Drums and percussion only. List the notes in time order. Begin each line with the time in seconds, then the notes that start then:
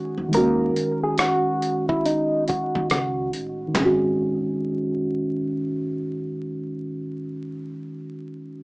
0.33 closed hi-hat
0.76 closed hi-hat
1.18 cross-stick, closed hi-hat
1.62 closed hi-hat
1.89 kick
2.06 closed hi-hat
2.48 kick, closed hi-hat
2.75 kick
2.90 cross-stick, closed hi-hat
3.33 closed hi-hat
3.75 kick, clap, floor tom